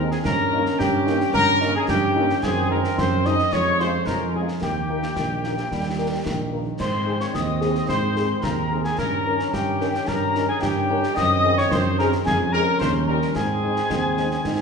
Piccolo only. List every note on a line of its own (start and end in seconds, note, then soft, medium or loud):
0.11 0.17 G#5 medium
0.25 0.80 A#5 medium
0.79 1.33 G5 medium
1.34 1.72 A#5 medium
1.76 1.82 G#5 medium
1.89 2.45 G5 medium
2.43 2.71 G#5 medium
2.71 2.77 A#5 medium
2.98 3.28 C6 medium
3.26 3.54 D#6 medium
3.53 3.79 C#6 medium
3.80 3.86 C6 medium
4.08 4.33 A#5 medium
4.35 4.41 G#5 medium
4.62 6.49 G5 medium
6.80 7.18 C6 medium
7.21 7.27 C#6 medium
7.35 7.86 D#6 medium
7.89 8.45 C6 medium
8.44 8.83 A#5 medium
8.84 9.00 G#5 medium
8.99 9.55 A#5 medium
9.54 10.09 G5 medium
10.08 10.48 A#5 medium
10.48 10.63 G#5 medium
10.61 11.16 G5 medium
11.16 11.55 D#6 medium
11.57 11.70 C#6 medium
11.71 11.77 C6 medium
11.98 12.05 A#5 medium
12.25 12.54 G#5 medium
12.52 12.80 A#5 medium
12.79 13.06 C6 medium
13.07 13.13 A#5 medium
13.36 14.61 G#5 medium